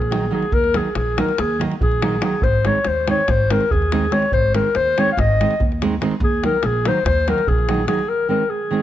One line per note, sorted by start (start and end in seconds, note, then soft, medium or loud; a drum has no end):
0.00 0.28 A#1 medium
0.00 0.33 G#4 medium
0.00 davul high soft
0.11 0.24 D#3 medium
0.11 0.24 F#3 medium
0.11 0.24 A#3 soft
0.11 0.25 D#4 medium
0.11 davul high medium
0.30 0.44 D#3 medium
0.30 0.44 F#3 soft
0.30 0.44 A#3 medium
0.30 0.44 D#4 medium
0.30 0.55 G#4 medium
0.42 davul high soft
0.52 0.78 D#2 medium
0.52 0.78 A#4 loud
0.52 davul low medium
0.64 davul high soft
0.74 0.87 D#3 soft
0.74 0.87 F#3 soft
0.74 0.88 A#3 soft
0.74 0.88 D#4 medium
0.74 0.96 G#4 medium
0.74 davul high medium
0.95 1.21 A#1 medium
0.95 1.20 G#4 medium
0.95 davul high medium
1.17 1.30 D#3 medium
1.17 1.30 F#3 medium
1.17 1.31 A#3 medium
1.17 1.31 D#4 medium
1.17 1.41 A#4 medium
1.17 davul high medium
1.29 davul high soft
1.38 1.65 D#2 medium
1.38 1.62 G#4 medium
1.38 davul high medium
1.59 1.72 D#3 medium
1.59 1.73 F#3 soft
1.59 1.73 A#3 soft
1.59 1.73 D#4 medium
1.59 davul high medium
1.72 davul high soft
1.81 2.18 A#1 medium
1.81 2.21 G#4 medium
1.81 davul low medium
1.92 davul high soft
2.02 2.14 D#3 medium
2.02 2.15 F#3 medium
2.02 2.15 A#3 medium
2.02 2.15 D#4 medium
2.02 davul high medium
2.21 2.34 D#3 medium
2.21 2.34 F#3 medium
2.21 2.35 A#3 soft
2.21 2.35 D#4 medium
2.21 2.45 G#4 medium
2.21 davul high medium
2.42 2.69 G#1 medium
2.42 2.68 C5 medium
2.42 davul low medium
2.65 2.77 D#3 soft
2.65 2.78 G#3 soft
2.65 2.78 C4 soft
2.65 2.78 D#4 medium
2.65 2.89 C#5 medium
2.65 davul high medium
2.85 3.12 D#2 medium
2.85 3.09 C5 medium
2.85 davul high medium
3.07 3.20 D#3 medium
3.07 3.20 G#3 medium
3.07 3.20 C4 medium
3.07 3.21 D#4 medium
3.07 3.31 C#5 medium
3.07 davul high medium
3.28 3.54 G#1 medium
3.28 3.53 C5 medium
3.28 davul high medium
3.28 davul low medium
3.50 3.63 D#3 medium
3.50 3.63 G#3 soft
3.50 3.64 C4 medium
3.50 3.64 D#4 medium
3.50 3.73 A#4 medium
3.50 davul high medium
3.61 davul high soft
3.71 4.08 D#2 medium
3.71 4.14 G#4 medium
3.71 davul low medium
3.82 davul high soft
3.92 4.04 D#3 medium
3.92 4.04 G#3 medium
3.92 4.05 C4 medium
3.92 4.05 D#4 medium
3.92 davul high medium
4.11 4.24 D#3 medium
4.11 4.24 G#3 medium
4.11 4.25 C4 soft
4.11 4.25 D#4 medium
4.11 4.32 C#5 medium
4.11 davul high medium
4.22 davul high soft
4.32 4.58 G#1 medium
4.32 4.54 C5 medium
4.32 davul low medium
4.54 4.67 D#3 medium
4.54 4.67 G#3 soft
4.54 4.67 C4 medium
4.54 4.68 D#4 medium
4.54 4.78 A#4 medium
4.54 davul high medium
4.75 5.01 D#2 medium
4.75 5.01 C5 loud
4.75 davul high medium
4.98 5.10 D#3 medium
4.98 5.10 G#3 medium
4.98 5.10 C4 medium
4.98 5.11 D#4 medium
4.98 5.12 C#5 medium
4.98 davul high medium
5.12 5.21 F5 medium
5.17 5.43 G#1 medium
5.17 5.66 D#5 medium
5.17 davul high medium
5.17 davul low medium
5.40 5.52 D#3 medium
5.40 5.53 G#3 soft
5.40 5.53 C4 soft
5.40 5.53 D#4 medium
5.40 davul high medium
5.51 davul high soft
5.60 5.96 D#2 medium
5.60 davul low medium
5.72 davul high soft
5.82 5.94 D#3 medium
5.82 5.94 G#3 medium
5.82 5.94 C4 medium
5.82 5.94 D#4 medium
5.82 davul high medium
6.01 6.13 D#3 medium
6.01 6.13 G#3 medium
6.01 6.14 C4 medium
6.01 6.14 D#4 medium
6.01 davul high medium
6.11 davul high soft
6.20 6.46 D#2 medium
6.20 6.43 G#4 medium
6.20 davul low medium
6.43 6.55 D#3 medium
6.43 6.56 F#3 soft
6.43 6.56 A#3 soft
6.43 6.56 D#4 medium
6.43 6.67 A#4 medium
6.43 davul high medium
6.63 6.89 A#1 medium
6.63 6.89 G#4 medium
6.63 davul high medium
6.85 6.98 D#3 medium
6.85 6.98 F#3 medium
6.85 6.99 A#3 medium
6.85 6.99 D#4 medium
6.85 7.06 C5 medium
6.85 davul high medium
7.05 7.31 D#2 medium
7.05 7.30 C5 medium
7.05 davul high medium
7.05 davul low medium
7.27 7.40 D#3 medium
7.27 7.40 F#3 medium
7.27 7.40 A#3 soft
7.27 7.40 D#4 medium
7.27 7.49 A#4 medium
7.27 davul high medium
7.38 davul high soft
7.47 7.84 A#1 medium
7.47 7.88 G#4 medium
7.47 davul low medium
7.59 davul high soft
7.68 7.81 D#3 medium
7.68 7.81 F#3 medium
7.68 7.81 A#3 medium
7.68 7.81 D#4 medium
7.68 davul high medium
7.87 8.00 D#3 medium
7.87 8.00 F#3 soft
7.87 8.01 A#3 medium
7.87 8.01 D#4 medium
7.87 8.10 G#4 medium
7.87 davul high medium
7.99 davul high soft
8.08 8.29 A#4 medium
8.29 8.42 D#3 medium
8.29 8.42 G#3 soft
8.29 8.42 C4 medium
8.29 8.43 D#4 medium
8.29 8.51 A#4 medium
8.49 8.82 G#4 medium
8.71 8.82 D#3 medium
8.71 8.82 G#3 medium
8.71 8.82 C4 medium
8.71 8.82 D#4 medium